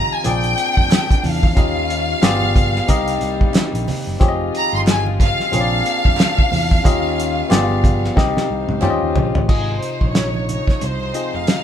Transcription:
Already playing: string section D#3 F3 G#3 F4, tine electric piano C4 F4 G4 G#4 C5 D#5 G5
0.12 violin section G#5
0.24 fingered electric bass A#1, string section C3 G#3 A#3 D4, tine electric piano C4 F4 G#4 A#4 D5, violin section G5, closed hi-hat, muted conga, low conga
0.44 closed hi-hat, muted conga
0.58 closed hi-hat
0.77 fingered electric bass F1, kick
0.90 snare, clap, closed hi-hat
1.11 kick, closed hi-hat, muted conga
1.24 fingered electric bass E2, violin section F5, open hi-hat, high conga, low conga
1.43 kick
1.55 fingered electric bass D#2, string section D#3 G3 C#4 F4, tine electric piano C#4 F4 G4 A#4 D#5, kick, closed hi-hat
1.77 muted conga
1.90 closed hi-hat
2.22 fingered electric bass G1, string section F3 G3 G#3 B3, tine electric piano B3 F4 G4 G#4 D5, snare, clap, closed hi-hat, high conga
2.42 muted conga, high conga
2.56 kick, closed hi-hat, low conga
2.76 snare
2.87 fingered electric bass C2, string section D#3 A#3 C4, tine electric piano C4 D#4 G4 A#4 D#5, kick, closed hi-hat, low conga
3.08 closed hi-hat
3.21 fingered electric bass C2, closed hi-hat
3.41 kick
3.54 muted fingered electric bass stroke, snare, clap, closed hi-hat
3.73 fingered electric bass A#1, closed hi-hat
3.88 open hi-hat, high conga, low conga
4.07 fingered electric bass F#1
4.20 fingered electric bass F1, string section D#3 F3 G#3 F4, tine electric piano C4 F4 G4 G#4 C#5, kick, closed hi-hat
4.28 tine electric piano D#5
4.41 muted conga
4.55 violin section A#5, closed hi-hat
4.73 fingered electric bass G1, violin section C6
4.87 violin section G#5, snare, clap, closed hi-hat, muted conga, high conga
5.07 muted conga, high conga
5.20 violin section F5, kick, closed hi-hat, low conga
5.40 snare
5.52 fingered electric bass A#1, string section C3 A#3 D4, tine electric piano C4 F4 G#4 A#4 C#5, closed hi-hat, low conga
5.61 tine electric piano D5
5.86 closed hi-hat
6.05 fingered electric bass F1, kick
6.17 snare, clap, closed hi-hat
6.38 kick, muted conga
6.52 fingered electric bass E2, open hi-hat, high conga, low conga
6.71 kick
6.84 fingered electric bass D#2, string section D#3 G3 C#4 F4, tine electric piano C#4 F4 G4 A#4 D#5, kick, closed hi-hat
7.05 muted conga
7.20 closed hi-hat
7.49 fingered electric bass G1, string section F3 G3 G#3 B3, tine electric piano B3 F4 G4 G#4 D5, snare, clap, closed hi-hat, muted conga, high conga
7.70 high conga
7.84 kick, closed hi-hat, low conga
8.04 snare
8.16 fingered electric bass C2, string section D#3 A#3 C5, tine electric piano C4 D#4 G4 A#4 D#5, kick, snare, low conga
8.36 fingered electric bass C3, snare, muted conga
8.50 fingered electric bass C2
8.69 fingered electric bass C#2, high tom
8.81 fingered electric bass D#2, string section C#3 G3 F4, tine electric piano C#4 F4 G4 C5 D5, clap, mid tom
8.90 tine electric piano D#5
9.03 fingered electric bass D#2
9.15 fingered electric bass A#1, floor tom, high conga, low conga
9.35 fingered electric bass A1, floor tom
9.47 fingered electric bass G#1, tine electric piano C3 D#4 F4 G#4 D#5, string section C3 F3 G#3 D#4, kick, crash
9.52 violin section G#4
9.69 violin section C5, muted conga
9.83 closed hi-hat
10.01 fingered electric bass A#1, violin section C#5, kick
10.15 snare, closed hi-hat, high conga
10.34 muted conga, high conga
10.49 violin section C#5, closed hi-hat, low conga
10.68 kick, snare
10.81 fingered electric bass C2, violin section C5, closed hi-hat, low conga
11.00 muted conga
11.13 tine electric piano C4 D#4 F4 G#4 D#5, closed hi-hat
11.34 fingered electric bass F1, violin section F5
11.47 snare, closed hi-hat, muted conga

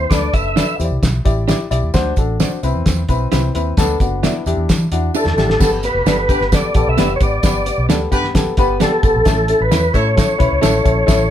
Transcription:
Already playing: tonewheel organ C5
0.10 fingered electric bass D2, upright piano D4 A4 B4, tonewheel organ D5, kick, snare, closed hi-hat, tambourine
0.33 fingered electric bass F#1, upright piano D4 A4 B4, tonewheel organ E5, kick, closed hi-hat, tambourine
0.56 clean electric guitar D4 F#4 A4 D5, upright piano D4 A4 B4, snare, closed hi-hat, tambourine
0.79 fingered electric bass E2, upright piano E4 G4 C5, closed hi-hat, tambourine
0.84 upright piano D5
0.90 fingered electric bass C2
1.03 fingered electric bass B1, kick, snare, closed hi-hat, tambourine
1.25 fingered electric bass A1, upright piano E4 G4 D5, kick, closed hi-hat, tambourine
1.47 clean electric guitar D4 G4 B4 D5, upright piano E4 G4 D5, snare, closed hi-hat, tambourine
1.71 fingered electric bass B1, upright piano E4 G4 D5, closed hi-hat, tambourine
1.83 fingered electric bass D#2
1.94 fingered electric bass D2, upright piano D4 F#4 C5, kick, snare, closed hi-hat, tambourine
2.16 fingered electric bass A1, upright piano D4 F#4 A4, kick, closed hi-hat, tambourine
2.40 clean electric guitar C4 F#4 A4 D5, upright piano D4 F#4 C5, snare, closed hi-hat, tambourine
2.63 fingered electric bass C2, upright piano C4 E4 B4, closed hi-hat, tambourine
2.75 fingered electric bass E2
2.86 fingered electric bass E2, kick, snare, closed hi-hat, tambourine
3.09 fingered electric bass B1, upright piano C4 E4 B4, kick, closed hi-hat, tambourine
3.32 fingered electric bass C2, upright piano C4 E4 B4, clean electric guitar E4 G4 B4 E5, snare, closed hi-hat, tambourine
3.54 fingered electric bass D#2, upright piano C4 E4 B4, closed hi-hat, tambourine
3.77 fingered electric bass D2, upright piano B3 D4 A4, kick, snare, closed hi-hat, tambourine
4.00 fingered electric bass F#1, upright piano B3 D4 F#4, kick, closed hi-hat, tambourine
4.23 clean electric guitar B3 F#4 A4 D5, upright piano B3 D4 E4, snare, closed hi-hat, tambourine
4.46 fingered electric bass E2, upright piano D4 E4 G4, closed hi-hat, tambourine
4.57 fingered electric bass E2
4.69 fingered electric bass E3, kick, snare, closed hi-hat, tambourine
4.92 fingered electric bass E2, upright piano D4 E4 F#4, closed hi-hat, tambourine
5.14 clean electric guitar D4 G4 B4 D5, upright piano D4 E4 A4, tonewheel organ A4, tambourine
5.25 fingered electric bass E2, snare
5.37 fingered electric bass A1, upright piano D4 E4 G4, snare, tambourine
5.48 fingered electric bass G#1, snare
5.60 fingered electric bass G1, upright piano B3 G4 A4, tonewheel organ A4, kick, snare, crash, tambourine
5.83 upright piano B3 G4 B4, tonewheel organ B4, closed hi-hat, tambourine
5.94 fingered electric bass F#1
6.06 fingered electric bass G1, clean electric guitar B3 D4 A4 D5, upright piano B3 G4 A4, snare, closed hi-hat, tambourine
6.28 upright piano B3 G4 B4, horn section D4 G4 B4, kick, closed hi-hat, tambourine
6.40 fingered electric bass G1, snare
6.52 upright piano B3 G4 A4, tonewheel organ D5, kick, snare, closed hi-hat, tambourine
6.74 fingered electric bass A1, upright piano B3 G4 A4, kick, closed hi-hat, tambourine
6.87 fingered electric bass B1, tonewheel organ E5
6.97 fingered electric bass F#1, clean electric guitar B3 D4 A4 D5, upright piano B3 G4 B4, snare, closed hi-hat, tambourine
7.16 tonewheel organ C#5
7.20 fingered electric bass G#1, upright piano B3 G4 B4, tonewheel organ D5, kick, closed hi-hat, tambourine
7.43 fingered electric bass G1, upright piano B3 G4 B4, kick, snare, closed hi-hat, tambourine
7.66 upright piano B3 G4 B4, closed hi-hat, tambourine
7.78 fingered electric bass B1
7.89 fingered electric bass D2, upright piano B3 G4 A4, clean electric guitar B3 D4 A4 D5, snare, closed hi-hat, tambourine
8.11 fingered electric bass G2, upright piano B3 G4 B4, horn section D4 G4 B4, kick, closed hi-hat, tambourine
8.24 snare
8.34 upright piano B3 G4 A4, kick, snare, closed hi-hat, tambourine
8.46 muted fingered electric bass stroke
8.57 fingered electric bass G1, upright piano B3 G4 B4, kick, closed hi-hat, tambourine
8.80 clean electric guitar B3 D4 A4 D5, upright piano B3 G4 A4, tonewheel organ A4, snare, closed hi-hat, tambourine
9.03 fingered electric bass G1, upright piano B3 G4 A4, kick, closed hi-hat, tambourine
9.15 fingered electric bass A#1
9.25 fingered electric bass A1, upright piano C#4 E4 A4, tonewheel organ A4, kick, snare, closed hi-hat, tambourine
9.48 upright piano C#4 E4 A4, closed hi-hat, tambourine
9.61 fingered electric bass A1, tonewheel organ B4
9.71 fingered electric bass E2, clean electric guitar C#4 E4 A4 C#5, upright piano C#4 E4 B4, snare, closed hi-hat, tambourine
9.93 fingered electric bass A2, upright piano C#4 E4 A4, horn section E4 A4 C#5, tonewheel organ C#5, kick, closed hi-hat, tambourine
10.16 upright piano C#4 E4 A4, kick, snare, closed hi-hat, tambourine
10.38 fingered electric bass B1, upright piano C#4 E4 B4, kick, closed hi-hat, tambourine
10.51 fingered electric bass C#2
10.61 fingered electric bass A1, upright piano C#4 E4 A4, clean electric guitar C#4 E4 A4 C#5, snare, closed hi-hat, tambourine
10.84 fingered electric bass A#1, upright piano C#4 E4 A4, kick, closed hi-hat, tambourine
11.06 fingered electric bass A1, upright piano C#4 E4 A4, kick, snare, closed hi-hat, tambourine

